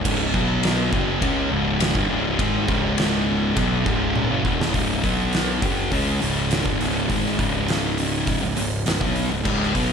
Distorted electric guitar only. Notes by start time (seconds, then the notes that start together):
0.05 C#2 G#2 C#3
0.34 B2 F#3 B3
0.92 F#2 C#3 F#3
1.21 C#3 G#3 C#4
1.50 C#2 G#2 C#3
1.95 G2 D3
2.09 C#2 G#2 C#3
2.39 G#2 D#3 G#3
2.67 C#2 G#2 C#3
3.56 B2 F#3 B3
3.85 C#2 G#2 C#3
4.30 F#2 C#3
4.44 E2 B2 E3
4.74 C#2 G#2 C#3
5.04 B2 F#3 B3
5.62 F#2 C#3 F#3
5.92 C#3 G#3 C#4
6.21 C#2 G#2 C#3
6.65 G2 D3
6.79 C#2 G#2 C#3
7.08 G#2 D#3 G#3
7.38 C#2 G#2 C#3
8.42 C#2 G#2
8.56 C#2 G#2
8.86 C#2 G#2
9.01 B2 F#3 B3
9.31 C#2 G#2
9.45 C#2 G#2 C#3
9.74 B2 F#3 B3